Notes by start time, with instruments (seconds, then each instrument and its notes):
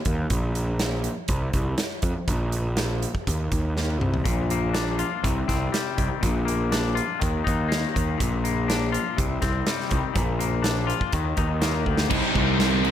0.05 picked electric bass D#2, kick, closed hi-hat
0.30 picked electric bass A#1, kick, closed hi-hat
0.55 closed hi-hat
0.79 snare, closed hi-hat
1.04 closed hi-hat
1.28 picked electric bass C2, kick, closed hi-hat
1.53 picked electric bass C2, kick, closed hi-hat
1.78 snare, closed hi-hat
2.02 picked electric bass F2, kick, closed hi-hat
2.28 picked electric bass A#1, kick, closed hi-hat
2.52 closed hi-hat
2.77 snare, closed hi-hat
3.02 closed hi-hat
3.15 kick
3.27 picked electric bass D#2, kick, closed hi-hat
3.52 picked electric bass D#2, kick, closed hi-hat
3.77 snare
4.01 picked electric bass C2, mid tom
4.14 floor tom
4.25 picked electric bass A#1, clean electric guitar A#2, kick, closed hi-hat
4.50 clean electric guitar A#3, closed hi-hat
4.74 clean electric guitar D4, snare, closed hi-hat
4.99 clean electric guitar F4, closed hi-hat
5.23 picked electric bass C2, clean electric guitar C3, kick, closed hi-hat
5.48 picked electric bass C2, clean electric guitar C4, kick, snare, closed hi-hat
5.72 clean electric guitar G3, snare, closed hi-hat
5.97 picked electric bass C2, clean electric guitar D#3, kick, closed hi-hat
6.21 picked electric bass A#1, clean electric guitar A#2, kick, closed hi-hat
6.45 clean electric guitar A#3, closed hi-hat
6.72 clean electric guitar D4, snare, closed hi-hat
6.95 clean electric guitar F4, closed hi-hat
7.19 picked electric bass D#2, clean electric guitar D#3, kick, closed hi-hat
7.44 picked electric bass D#2, clean electric guitar D#4, kick, closed hi-hat
7.68 clean electric guitar A#3, snare, closed hi-hat
7.94 picked electric bass D#2, clean electric guitar D#3, kick, closed hi-hat
8.18 picked electric bass A#1, clean electric guitar A#2, kick, closed hi-hat
8.44 clean electric guitar A#3, closed hi-hat
8.68 clean electric guitar D4, snare, closed hi-hat
8.92 clean electric guitar F4, closed hi-hat
9.17 picked electric bass C2, clean electric guitar C3, kick, closed hi-hat
9.42 picked electric bass C2, clean electric guitar C4, kick, snare, closed hi-hat
9.67 clean electric guitar G3, snare, closed hi-hat
9.81 snare
9.89 picked electric bass C2, clean electric guitar D#3, kick, closed hi-hat
10.14 picked electric bass A#1, clean electric guitar A#2, kick, closed hi-hat
10.39 clean electric guitar A#3, closed hi-hat
10.63 clean electric guitar D4, snare, closed hi-hat
10.87 clean electric guitar F4, closed hi-hat
11.01 kick
11.12 picked electric bass D#2, clean electric guitar D#3, kick, closed hi-hat
11.37 picked electric bass D#2, clean electric guitar D#4, kick, closed hi-hat
11.61 clean electric guitar A#3, snare, closed hi-hat
11.86 picked electric bass D2, clean electric guitar D#3, kick
11.98 snare
12.10 picked electric bass C2, distorted electric guitar C3 G3 C4 D#4 G4, kick, crash
12.35 picked electric bass C2, distorted electric guitar G3 C4 D#4, kick, crash
12.58 distorted electric guitar C3 G3 C4 D#4, snare, crash
12.83 distorted electric guitar C3 G3 C4 D#4 G4, crash